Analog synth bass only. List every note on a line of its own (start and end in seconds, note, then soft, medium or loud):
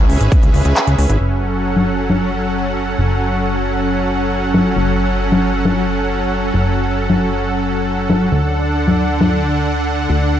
0.10 0.18 C#2 loud
0.21 0.29 G#1 loud
0.43 0.51 C#2 medium
0.54 0.62 C#2 loud
0.65 0.73 C#2 medium
0.87 0.96 C#2 medium
0.98 1.07 C#2 loud
1.09 1.18 G#1 medium
1.21 2.96 F#1 medium
2.99 4.74 F#1 medium
4.76 6.52 F#1 medium
6.54 8.30 F#1 medium
8.32 10.07 D2 medium
10.10 10.40 D2 medium